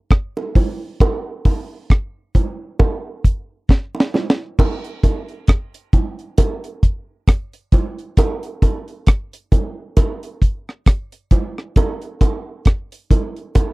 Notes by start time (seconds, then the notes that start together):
0.11 kick, cross-stick
0.37 high bongo
0.55 kick, open hi-hat, low bongo
1.00 kick, hi-hat pedal, high bongo
1.45 kick, open hi-hat, high bongo
1.90 kick, cross-stick, hi-hat pedal
2.35 kick, closed hi-hat, low bongo
2.79 kick, high bongo
3.24 kick, closed hi-hat
3.69 kick, snare
3.95 high bongo
4.00 snare
4.14 snare, low bongo
4.30 snare
4.59 kick, crash, high bongo
4.84 closed hi-hat
5.03 kick, closed hi-hat, high bongo
5.29 closed hi-hat
5.47 kick, cross-stick, closed hi-hat
5.74 closed hi-hat
5.93 kick, closed hi-hat, high bongo, low bongo
6.19 closed hi-hat
6.38 kick, closed hi-hat, high bongo
6.64 closed hi-hat
6.83 kick, closed hi-hat
7.28 kick, cross-stick, closed hi-hat
7.53 closed hi-hat
7.72 kick, closed hi-hat, low bongo
7.99 closed hi-hat
8.17 kick, closed hi-hat, high bongo
8.43 closed hi-hat
8.62 kick, closed hi-hat, high bongo
8.88 closed hi-hat
9.07 kick, cross-stick, closed hi-hat
9.33 closed hi-hat
9.52 kick, closed hi-hat, high bongo, low bongo
9.97 kick, closed hi-hat, high bongo
10.23 closed hi-hat
10.42 kick, closed hi-hat
10.69 cross-stick
10.86 kick, cross-stick, closed hi-hat
11.12 closed hi-hat
11.31 kick, closed hi-hat, low bongo
11.58 cross-stick
11.76 kick, closed hi-hat, high bongo
12.02 closed hi-hat
12.21 kick, closed hi-hat, high bongo
12.65 kick, cross-stick, closed hi-hat
12.92 closed hi-hat
13.11 kick, closed hi-hat, high bongo, low bongo
13.36 closed hi-hat
13.55 kick, closed hi-hat, high bongo